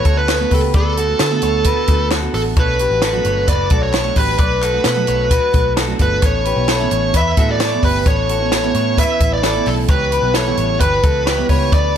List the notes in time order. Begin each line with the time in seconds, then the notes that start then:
Already playing: C#5
0.05 D2 D3 A3 B3 F#4 A4, kick, closed hi-hat
0.17 B4
0.29 A4 C#5, snare, clap, closed hi-hat
0.40 D3 A3 B3 F#4
0.51 C#2 G4 A4 B4, kick, open hi-hat
0.74 D2 A3 B3 F#4 A4 B4 D5, kick, closed hi-hat
0.97 F#4 A4, closed hi-hat
1.08 A3 B3 F#4
1.19 D3, snare, clap, closed hi-hat
1.31 D3 A3 B3 F#4
1.42 D2 A4 C#5, closed hi-hat
1.64 A3 B3 F#4 B4, kick, closed hi-hat
1.88 D2 D3 A3 B3 F#4, kick, closed hi-hat
2.11 F#4 A4, snare, clap, closed hi-hat
2.22 D3 A3 B3 F#4
2.34 A1 A4, open hi-hat
2.56 B1 F#3 A3 D4 F#4 A4 B4 C#5, kick, closed hi-hat
2.79 G4 B4, closed hi-hat
2.90 A1 A3 D4 F#4
3.02 F#4 A4, snare, clap, closed hi-hat
3.13 B2 F#3 A3 D4 F#4
3.25 G1 A4 C#5, closed hi-hat
3.46 F#1 F#3 A3 D4 F#4 B4 D5, kick, closed hi-hat
3.70 B1 F#3 A3 D4 F#4 A4, kick, closed hi-hat
3.83 C#5
3.93 A4 C#5, snare, clap, closed hi-hat
4.04 B2 F#3 A3 D4 F#4
4.16 A1 G4 B4, kick, open hi-hat
4.38 B1 F#3 A3 D4 F#4 B4 D5, kick, closed hi-hat
4.62 F#4 A4, clap, closed hi-hat
4.72 A3 D4 F#4
4.84 B2, snare, clap, closed hi-hat
4.95 B2 F#3 A3 D4 F#4
5.07 B1 A4 C#5, closed hi-hat
5.29 F#3 A3 D4 F#4 B4, kick, closed hi-hat
5.51 B1 F#3 A3 D4 F#4, kick, closed hi-hat
5.76 F#4 A4, snare, clap, closed hi-hat
5.87 B2 F#3 A3 D4 F#4
5.99 G1 B4, kick, closed hi-hat
6.22 A1 E3 B3 C#4 E4 A4 C#5, kick, closed hi-hat
6.26 C#5
6.45 G4 B4, closed hi-hat
6.55 B1 B3 C#4 E4
6.68 E4 A4, snare, clap, closed hi-hat
6.80 A2 E3 B3 C#4 E4
6.91 A1 A4 C#5, closed hi-hat
7.13 E2 E3 B3 C#4 E4 B4 E5, kick, closed hi-hat
7.37 A2 E3 B3 C#4 E4 F#4 A4, kick, closed hi-hat
7.51 D5
7.60 A4 C#5, snare, clap, closed hi-hat
7.71 A2 E3 B3 C#4 E4
7.83 G1 G4 B4, kick, open hi-hat
8.05 A1 E3 B3 C#4 E4 A4 C#5, kick, closed hi-hat
8.29 F#4 A4, closed hi-hat
8.40 B3 C#4 E4
8.52 snare, clap, closed hi-hat
8.63 A2 E3 B3 C#4 E4
8.74 A2 A4 C#5, closed hi-hat
8.98 E3 B3 C#4 E4 B4 E5, kick, closed hi-hat
9.20 A1 E3 B3 C#4 E4, kick, closed hi-hat
9.33 D5
9.43 E4 A4, snare, clap, closed hi-hat
9.55 A2 E3 B3 C#4 E4
9.66 B1 A4, open hi-hat
9.88 C#2 E3 G3 B3 E4 G4 B4 C#5, kick, closed hi-hat
10.12 G4 B4, closed hi-hat
10.22 B1 G3 B3 E4
10.34 E4 A4 C#5, snare, clap, closed hi-hat
10.46 C#3 E3 G3 B3 E4
10.57 A1 A4 C#5, closed hi-hat
10.80 G1 E3 G3 B3 E4 G4 B4, kick, closed hi-hat
11.03 C#2 E3 G3 B3 E4 F#4 A4, kick, closed hi-hat
11.26 G4 C#5, snare, clap, closed hi-hat
11.38 C#3 E3 G3 B3 E4
11.49 C#2 G4 B4 C#5, kick, open hi-hat
11.72 D2 F#3 A3 B3 F#4 B4 D5, kick, closed hi-hat